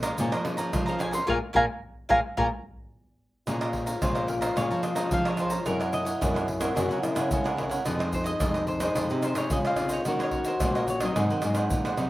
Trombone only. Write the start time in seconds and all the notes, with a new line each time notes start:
3.48 F4
5.66 E4
6.76 F#4
7.02 E4
7.85 D#4
9.51 F4
10.05 F#4
11.16 D#4